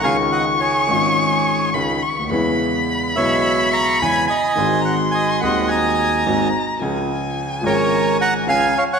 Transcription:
<<
  \new Staff \with { instrumentName = "Violin" } { \time 4/4 \key cis \mixolydian \tempo 4 = 106 cis'''2. b''8 cis'''8 | b''1 | bis''2 ais''2 | gis''1 | }
  \new Staff \with { instrumentName = "Bandoneon" } { \time 4/4 \key cis \mixolydian <eis'' gis''>8 <dis'' fis''>8 <gis' cis''>2 r4 | r4. <cis'' e''>4 <ais'' cis'''>8 <gis'' b''>8 <dis'' gis''>8~ | <dis'' gis''>8 <fis'' ais''>8 <dis'' gis''>8 <dis'' fis''>8 <dis'' gis''>4. r8 | r4. <ais' cis''>4 <fis'' ais''>8 <eis'' gis''>8 <cis'' eis''>16 <cis'' fis''>16 | }
  \new Staff \with { instrumentName = "Grand piano" } { \clef bass \time 4/4 \key cis \mixolydian <cis, cis dis gis cis' eis'>4. <gis,, gis, dis gis cis' eis'>4. <cis, cis dis gis cis' eis'>8 r32 cis,32 d,32 dis,32 | <e, cis e gis b e'>4. <b,, b, cis gis b e'>4. <e, cis e gis b e'>8 r8 | <gis,, gis, dis gis bis fis'>4. <dis,, dis, dis gis bis fis'>4. <gis,, gis, dis gis bis fis'>8 r8 | <cis, cis eis gis cis' gis'>4. <gis,, gis, eis gis cis' gis'>4. <cis, cis eis gis cis' gis'>8 r8 | }
>>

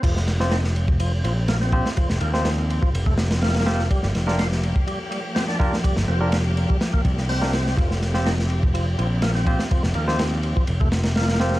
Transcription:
<<
  \new Staff \with { instrumentName = "Tine electric piano" } { \time 4/4 \key g \minor \tempo 4 = 124 r8. <c' f' g' c''>16 r2 r8 <c' f' g' c''>16 r16 | r8. <c' f' g' c''>16 r2 r8 <c' f' g' c''>16 r16 | r8. <d' f' g' bes'>16 r2 r8 <d' f' g' bes'>16 r16 | r8. <d' f' g' bes'>16 r2 r16 <d' f' g' bes'>16 r8 |
r8. <c' f' g' c''>16 r2 r8 <c' f' g' c''>16 r16 | r8. <c' f' g' c''>16 r2 r8 <c' f' g' c''>16 r16 | }
  \new Staff \with { instrumentName = "String section" } { \time 4/4 \key g \minor << { <f g'>1~ | <f g'>1~ | <f g'>1~ | <f g'>1~ |
<f g'>1~ | <f g'>1 | } \\ { c'1~ | c'1 | bes1~ | bes1 |
c'1~ | c'1 | } >> }
  \new Staff \with { instrumentName = "Tonewheel organ" } { \clef bass \time 4/4 \key g \minor f16 f16 r16 f16 ees'16 r8. f16 r16 f16 r16 bes16 c'16 c'16 r16 | f16 r16 bes16 ees16 r8. f16 r16 a16 r8 bes4 | g16 g16 r16 g16 f'16 r8. g16 r16 g16 r16 c'16 d'16 d'16 r16 | g16 r16 c'16 f16 r8. g16 r16 bes16 r8 c'4 |
f16 f16 r16 f16 ees'16 r8. f16 r16 f16 r16 bes16 c'16 c'16 r16 | f16 r16 bes16 ees16 r8. f16 r16 a16 r8 bes4 | }
  \new Staff \with { instrumentName = "Picked electric bass" } { \clef bass \time 4/4 \key g \minor f,,2~ f,,8 bes,,4~ bes,,16 r16 | r16 f,,16 ees,4~ ees,16 r16 f,,2 | r16 g,,16 f,,4~ f,,16 r2 r16 | r16 g,,16 f,,4~ f,,16 r8. c,4. |
f,,2~ f,,8 bes,,4~ bes,,16 r16 | r16 f,,16 ees,4~ ees,16 r16 f,,2 | }
  \new DrumStaff \with { instrumentName = "Drums" } \drummode { \time 4/4 <cymc bd cymr>16 sn16 <cymr sn>16 sn16 <cymr sn>16 sn16 cymr16 bd16 cymr8 cymr8 <cymr sn>16 sn16 <bd cymr>16 sn16 | <bd cymr>16 sn16 cymr16 sn16 <cymr sn>8 cymr16 bd16 cymr16 bd16 <cymr sn>16 <cymr sn>16 <cymr sn>32 <cymr sn>32 <cymr sn>32 <cymr sn>32 <cymr sn>16 sn16 | <bd cymr>16 sn16 <cymr sn>16 sn16 <cymr sn>16 sn16 cymr16 bd16 cymr8 cymr8 <cymr sn>16 sn16 <bd cymr>16 sn16 | <bd cymr>16 sn8. <cymr sn>8 cymr16 bd16 <cymr sn>16 bd16 <bd cymr>16 sn16 hho16 sn16 <cymr sn>16 sn16 |
<bd cymr>16 sn16 <cymr sn>16 sn16 <cymr sn>16 sn16 cymr16 bd16 cymr8 cymr8 <cymr sn>16 sn16 <bd cymr>16 sn16 | <bd cymr>16 sn16 cymr16 sn16 <cymr sn>8 cymr16 bd16 cymr16 bd16 <cymr sn>16 <cymr sn>16 <cymr sn>32 <cymr sn>32 <cymr sn>32 <cymr sn>32 <cymr sn>16 sn16 | }
>>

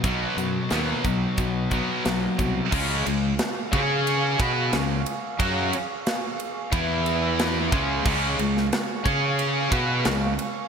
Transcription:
<<
  \new Staff \with { instrumentName = "Analog synth pad" } { \time 4/4 \key ces \lydian \tempo 4 = 90 r1 | <aes' f'' des'''>1~ | <aes' f'' des'''>2 <b' e'' e'''>4. <aes' f'' des'''>8~ | <aes' f'' des'''>1 | }
  \new Staff \with { instrumentName = "Distorted electric guitar" } { \time 4/4 \key ces \lydian <ces ges ces'>1 | <des aes des'>8 <des aes>8 r8 <des' aes' des''>4 <ces' ges' ces''>8 <des aes>8 r8 | <ges des' ges'>8 r4. <e b e'>4. <des aes des'>8 | <des aes des'>8 <des aes>8 r8 <des' aes' des''>4 <ces' ges' ces''>8 <des aes>8 r8 | }
  \new Staff \with { instrumentName = "Distorted electric guitar" } { \clef bass \time 4/4 \key ces \lydian <ces ges ces'>8 <ces ges>8 <ces ges ces'>8 <ces ges>8 <ces ges>8 <ces ges ces'>8 <ces ges>8 <ces ges>8 | <des aes des'>8 <des aes>8 r8 <des' aes' des''>4 <ces' ges' ces''>8 <des aes>8 r8 | <ges des' ges'>8 r4. <e b e'>4. <des aes des'>8 | <des aes des'>8 <des aes>8 r8 <des' aes' des''>4 <ces' ges' ces''>8 <des aes>8 r8 | }
  \new Staff \with { instrumentName = "Distorted electric guitar" } { \clef bass \time 4/4 \key ces \lydian <ces ges ces'>8 <ces ges>8 <ces ges ces'>8 <ces ges>8 <ces ges>8 <ces ges ces'>8 <ces ges>8 <ces ges>8 | <des aes des'>8 <des aes>8 r8 <des' aes' des''>4 <ces' ges' ces''>8 <des aes>8 r8 | <ges des' ges'>8 r4. <e b e'>4. <des aes des'>8 | <des aes des'>8 <des aes>8 r8 <des' aes' des''>4 <ces' ges' ces''>8 <des aes>8 r8 | }
  \new Staff \with { instrumentName = "Fingered electric bass" } { \clef bass \time 4/4 \key ces \lydian ces,8 ges,8 ees,8 ces,8 ces,4 ces,8 c,8 | des,8 des,8 r8 des4 ces8 des,8 r8 | ges,8 r4. e,4. des,8 | des,8 des,8 r8 des4 ces8 des,8 r8 | }
  \new DrumStaff \with { instrumentName = "Drums" } \drummode { \time 4/4 <hh bd>8 hh8 <hh sn>8 <hh bd>8 <hh bd>8 <hh bd>8 <hh sn>8 <hh bd>8 | <cymc bd>8 cymr8 <cymr sn>8 <bd cymr>8 cymr8 <bd cymr>8 <cymr sn>8 cymr8 | <bd cymr>8 cymr8 <cymr sn>8 cymr8 <bd cymr>8 cymr8 <cymr sn>8 <bd cymr>8 | <cymc bd>8 cymr16 sn16 <cymr sn>8 <bd cymr>8 cymr8 <bd cymr>8 <cymr sn>8 cymr8 | }
>>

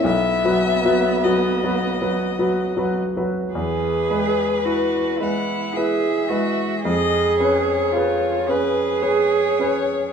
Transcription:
<<
  \new Staff \with { instrumentName = "Violin" } { \time 3/4 \key e \major \tempo 4 = 54 e''4 dis''4. r8 | b'4. fis''8 e''4 | dis''8 cis''4 b'8 cis''4 | }
  \new Staff \with { instrumentName = "Cello" } { \time 3/4 \key e \major b2~ b8 r8 | gis'4 fis'8 e'8 gis'8 fis'8 | gis'4 eis'8 gis'4. | }
  \new Staff \with { instrumentName = "Grand piano" } { \time 3/4 \key e \major \tuplet 3/2 { b,,8 <fis fis' b'>8 <fis fis' b'>8 <fis fis' b'>8 <fis fis' b'>8 <fis fis' b'>8 <fis fis' b'>8 <fis fis' b'>8 <fis fis' b'>8 } | e,8 <gis b'>8 <e' b'>8 <gis b'>8 <e' b'>8 <gis b'>8 | eis,8 <cis' b'>8 <gis' b'>8 <cis' b'>8 <gis' b'>8 <cis' b'>8 | }
>>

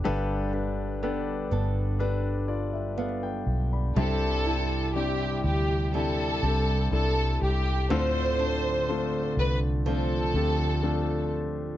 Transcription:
<<
  \new Staff \with { instrumentName = "Violin section" } { \time 4/4 \key c \major \tempo 4 = 61 r1 | a'4 g'8 g'8 a'4 a'8 g'8 | c''4. b'8 a'4. r8 | }
  \new Staff \with { instrumentName = "Grand piano" } { \time 4/4 \key c \major << { r2 r8 <f' d''>16 <g' e''>16 <a' f''>16 <b' g''>8 <d'' b''>16~ | <d'' b''>16 r2. r8. | r1 | } \\ { <d' g' a' b'>8 <d' g' a' b'>8 <d' g' a' b'>4 <d' g' a' b'>4 r4 | <g c' d' e' g'>4 <g c' d' e' g'>4 <g c' d' e' g'>8 <g c' d' e' g'>8 <g c' d' e' a'>4 | <a c' d' f' a'>4 <a c' d' f' a'>4 <a c' d' f' c''>8 <a c' d' f' g'>8 <a c' d' f' a'>4 | } >> }
  \new Staff \with { instrumentName = "Grand piano" } { \clef bass \time 4/4 \key c \major <g, d>4. r2 r8 | g,4. r2 r8 | a,4. r2 r8 | }
  \new Staff \with { instrumentName = "Nylon-string guitar" } { \time 4/4 \key c \major g,4 b8 <b d' a'>8 d'4 b4 | c8 e'4. g2 | d8 d'4. f2 | }
  \new Staff \with { instrumentName = "Fingered electric bass" } { \clef bass \time 4/4 \key c \major g,,4. g,,2 b,,8 | c,4. d,4 c,8 c,8 c,8 | d,4. c,4 d,4. | }
>>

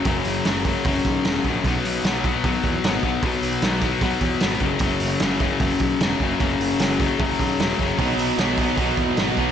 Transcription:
<<
  \new Staff \with { instrumentName = "Distorted electric guitar" } { \clef bass \time 4/4 \key b \major \tempo 4 = 151 r1 | r1 | r1 | r1 |
r1 | <b, fis b dis'>4 <b, fis b dis'>8 <b, fis b dis'>8 <b, fis b dis'>4 <b, fis b dis'>8 <b, fis b dis'>8 | }
  \new Staff \with { instrumentName = "Distorted electric guitar" } { \clef bass \time 4/4 \key b \major <fis, cis fis>4 <fis, cis fis>8 <fis, cis fis>8 <fis, cis fis>4 <fis, cis fis>8 <fis, cis fis>8 | <b, fis b>4 <b, fis b>8 <b, fis b>8 <b, fis b>4 <b, fis b>8 <b, fis b>8 | <b, fis b>4 <b, fis b>8 <b, fis b>8 <b, fis b>4 <b, fis b>8 <fis, cis fis>8 | <fis, cis fis>4 <fis, cis fis>8 <fis, cis fis>8 <fis, cis fis>4 <fis, cis fis>8 <fis, cis fis>8 |
<fis, cis fis>4 <fis, cis fis>8 <fis, cis fis>8 <fis, cis fis>4 <fis, cis fis>8 <fis, cis fis>8 | <b, fis b>4 <b, fis b>8 <b, fis b>8 <b, fis b>4 <b, fis b>8 <b, fis b>8 | }
  \new Staff \with { instrumentName = "Picked electric bass" } { \clef bass \time 4/4 \key b \major fis,,8 fis,,8 fis,,4 fis,,8 b,,8 e,,8 ais,,8 | b,,8 b,,8 b,,4 b,,8 e,8 gis,,8 b,,8 | b,,8 b,,8 b,,4 b,,8 e,8 gis,,8 fis,,8 | fis,,8 fis,,8 fis,,4 fis,,8 b,,8 e,,8 fis,,8 |
fis,,8 fis,,8 fis,,4 fis,,8 b,,8 e,,8 fis,,8 | b,,8 b,,8 b,,4 b,,8 e,8 gis,,8 b,,8 | }
  \new DrumStaff \with { instrumentName = "Drums" } \drummode { \time 4/4 <hho bd>8 hho8 <hho sn>8 <hho bd>8 <hho bd>8 <hho bd>8 <hho sn>8 <hho bd>8 | <hho bd>8 hho8 <hho sn>8 <hho bd>8 <hho bd>8 <hho bd>8 <hho sn>8 <hho bd>8 | <hho bd>8 hho8 <hho sn>8 <hho bd>8 <hho bd>8 <hho bd>8 <hho sn>8 <hho bd>8 | <hho bd>8 hho8 <hho sn>8 <hho bd>8 <hho bd>8 <hho bd>8 <hho sn>8 <hho bd>8 |
<hho bd>8 hho8 <hho sn>8 <hho bd>8 <hho bd>8 <hho bd>8 <hho sn>8 <hho bd>8 | <hho bd>8 hho8 <hho sn>8 <hho bd>8 <hho bd>8 <hho bd>8 <hho sn>8 <hho bd>8 | }
>>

